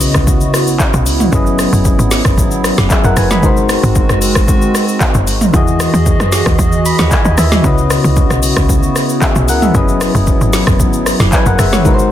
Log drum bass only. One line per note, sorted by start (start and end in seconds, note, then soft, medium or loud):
0.00 0.11 B1 medium
0.15 0.48 C#2 medium
0.94 1.08 B1 medium
1.06 1.29 C#2 medium
1.33 1.67 F#1 loud
1.73 1.95 F#1 loud
1.99 2.21 G#1 loud
2.25 2.39 F#1 medium
2.38 2.72 G#1 medium
2.78 2.89 F#1 medium
3.04 3.15 F#1 loud
3.17 3.45 F#1 medium
3.43 3.77 G#1 loud
3.83 4.06 G#1 loud
4.10 4.37 F#1 medium
4.36 4.69 G#1 medium
5.15 5.29 F#1 medium
5.27 5.50 G#1 loud
5.54 5.88 E2 loud
5.94 6.16 E2 loud
6.20 6.42 F#2 medium
6.46 6.57 D#2 medium
6.59 6.93 E2 medium
6.99 7.10 D#2 medium
7.25 7.36 D#2 medium
7.38 7.60 D#2 medium
7.64 7.98 C#2 loud
8.04 8.27 C#2 loud
8.30 8.53 B1 medium
8.57 8.90 C#2 medium
9.36 9.50 B1 medium
9.48 9.71 C#2 loud
9.75 10.09 F#1 loud
10.15 10.37 F#1 loud
10.41 10.64 G#1 medium
10.67 10.81 F#1 medium
10.80 11.14 G#1 medium
11.20 11.31 F#1 medium
11.46 11.57 F#1 loud
11.59 11.87 F#1 medium
11.85 12.12 G#1 loud